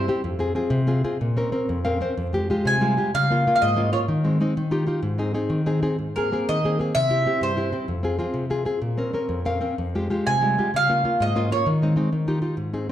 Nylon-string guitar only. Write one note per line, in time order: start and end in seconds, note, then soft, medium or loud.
0.08 0.21 C4 soft
0.08 0.21 E4 soft
0.08 0.21 G4 medium
0.24 0.55 F2 medium
0.39 0.54 C4 soft
0.39 0.54 F4 soft
0.39 0.55 G#4 medium
0.55 0.81 C4 soft
0.55 0.81 F4 soft
0.55 0.81 G#4 medium
0.70 1.02 C3 medium
0.87 1.03 C4 medium
0.87 1.03 F4 medium
0.87 1.03 G#4 medium
1.04 1.17 C4 soft
1.04 1.17 F4 soft
1.04 1.17 G#4 medium
1.21 1.51 A#2 medium
1.37 1.51 C4 soft
1.37 1.52 C#4 soft
1.37 1.52 A#4 soft
1.52 1.78 C4 soft
1.52 1.78 C#4 soft
1.52 1.78 A#4 soft
1.69 2.00 F2 medium
1.85 2.00 C4 soft
1.85 2.00 C#4 soft
1.85 2.00 A#4 medium
1.85 1.99 F5 medium
2.01 2.13 C4 soft
2.01 2.13 C#4 soft
2.01 2.14 A#4 soft
2.01 2.16 C5 soft
2.17 2.48 F2 medium
2.33 2.49 G#3 soft
2.33 2.49 F4 soft
2.33 2.50 G4 medium
2.50 2.76 G#3 soft
2.50 2.76 F4 soft
2.50 2.76 G4 soft
2.65 2.97 C3 medium
2.81 3.08 G3 medium
2.81 2.96 G#3 medium
2.81 2.96 F4 soft
2.97 3.10 G#3 soft
2.97 3.10 F4 soft
2.97 3.11 G4 soft
3.14 3.45 C#3 medium
3.30 3.46 A#3 soft
3.30 3.46 C#4 soft
3.30 3.47 F4 soft
3.47 3.72 A#3 soft
3.47 3.72 C#4 soft
3.47 3.72 F4 soft
3.62 3.93 G#2 medium
3.76 3.91 A#3 medium
3.76 3.91 C#4 medium
3.76 3.92 F4 medium
3.92 4.05 A#3 soft
3.92 4.05 C#4 soft
3.92 4.05 F4 soft
4.08 4.39 D#3 medium
4.24 4.39 G#3 soft
4.24 4.40 C4 soft
4.24 4.40 D#4 soft
4.40 4.53 G#3 medium
4.40 4.53 C4 soft
4.40 4.54 D#4 medium
4.57 4.87 D#3 medium
4.71 4.85 D#4 soft
4.71 4.86 F4 medium
4.71 4.87 G4 medium
4.87 4.99 D#4 soft
4.87 5.00 F4 soft
4.87 5.00 G4 soft
5.03 5.33 G#2 medium
5.18 5.33 C4 soft
5.18 5.33 D#4 soft
5.18 5.34 G#4 soft
5.34 5.60 C4 soft
5.34 5.60 D#4 soft
5.34 5.61 G#4 soft
5.50 5.82 D#3 medium
5.66 5.81 C4 soft
5.66 5.81 D#4 soft
5.66 5.82 G#4 medium
5.83 5.96 C4 soft
5.83 5.96 D#4 soft
5.83 5.96 G#4 soft
5.99 6.30 G#2 soft
6.17 6.31 A#3 soft
6.17 6.31 C4 soft
6.17 6.32 G#4 soft
6.32 6.57 A#3 soft
6.32 6.58 C4 soft
6.32 6.58 G#4 soft
6.49 6.79 D#3 medium
6.64 6.78 A#3 soft
6.64 6.78 C4 soft
6.64 6.79 G#4 medium
6.79 6.92 A#3 soft
6.79 6.92 C4 soft
6.79 6.93 G#4 soft
6.95 7.26 C3 medium
7.10 7.25 C4 soft
7.10 7.26 E4 soft
7.10 7.26 G4 soft
7.26 7.51 C4 soft
7.26 7.52 E4 soft
7.26 7.52 G4 soft
7.41 7.72 G2 medium
7.56 7.71 C4 soft
7.56 7.71 E4 soft
7.56 7.72 G4 medium
7.72 7.85 C4 soft
7.72 7.85 E4 soft
7.72 7.86 G4 soft
7.88 8.19 F2 medium
8.03 8.17 C4 soft
8.03 8.18 F4 soft
8.03 8.18 G#4 medium
8.19 8.44 C4 soft
8.19 8.45 F4 soft
8.19 8.45 G#4 medium
8.34 8.65 C3 medium
8.50 8.64 C4 medium
8.50 8.64 F4 soft
8.50 8.65 G#4 medium
8.65 8.78 C4 soft
8.65 8.79 F4 soft
8.65 8.79 G#4 soft
8.82 9.13 A#2 medium
8.97 9.12 C4 soft
8.97 9.13 C#4 soft
8.97 9.13 A#4 soft
9.13 9.39 C4 soft
9.13 9.39 C#4 soft
9.13 9.40 A#4 soft
9.29 9.60 F2 medium
9.45 9.59 C4 soft
9.45 9.60 C#4 soft
9.45 9.60 A#4 medium
9.45 9.75 F5 medium
9.61 9.74 C4 soft
9.61 9.74 C#4 soft
9.61 9.74 A#4 soft
9.78 10.09 F2 medium
9.95 10.09 G#3 soft
9.95 10.09 F4 soft
9.95 10.10 G4 soft
10.10 10.35 G#3 soft
10.10 10.35 F4 soft
10.10 10.36 G4 soft
10.27 10.57 C3 medium
10.41 10.67 G3 medium
10.41 10.57 G#3 soft
10.41 10.57 F4 soft
10.58 10.70 G#3 soft
10.58 10.70 F4 soft
10.58 10.71 G4 soft
10.74 11.04 C#3 medium
10.89 11.03 A#3 soft
10.89 11.04 C#4 soft
10.89 11.04 F4 soft
11.04 11.29 A#3 soft
11.04 11.29 C#4 soft
11.04 11.29 F4 soft
11.20 11.50 G#2 medium
11.35 11.50 A#3 soft
11.35 11.50 C#4 soft
11.35 11.50 F4 medium
11.51 11.63 A#3 soft
11.51 11.63 C#4 soft
11.51 11.63 F4 soft
11.66 11.96 D#3 medium
11.82 11.95 G#3 soft
11.82 11.96 C4 soft
11.82 11.96 D#4 soft
11.96 12.09 G#3 soft
11.96 12.09 C4 soft
11.96 12.09 D#4 soft
12.13 12.42 D#3 medium
12.28 12.41 D#4 medium
12.28 12.41 F4 soft
12.28 12.41 G4 soft
12.42 12.55 D#4 soft
12.42 12.55 F4 soft
12.42 12.55 G4 soft
12.57 12.88 G#2 medium
12.73 12.88 C4 soft
12.73 12.89 D#4 soft
12.73 12.90 G#4 soft